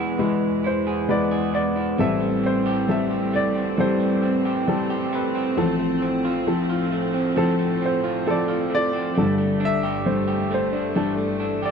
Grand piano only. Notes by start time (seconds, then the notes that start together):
Already playing: E2 E3 G#3 E4 G#4 B4 D5 E5
0.19 G#3 E4 B4
0.66 C5
1.09 G#3 E4 B4 D5
1.55 D5
1.99 A1 A2 G3 C4 A4 C5 E5
2.46 C5
2.89 G3 C4 A4 E5
3.36 D5
3.78 G3 C4 G4 A4 C5
4.68 G3 C4 A4
5.15 B4
5.57 A1 A2 F3 C4 A4
5.61 C4
6.47 F3 C4 A4
7.37 F3 C4 A4
7.86 C5
8.27 F3 C4 A4 D5
8.75 A4 D5
9.17 G1 G2 G3 D4 A4
9.65 E5
10.06 G3 D4 C5
10.54 C5
10.96 G3 D4 A4
11.65 D5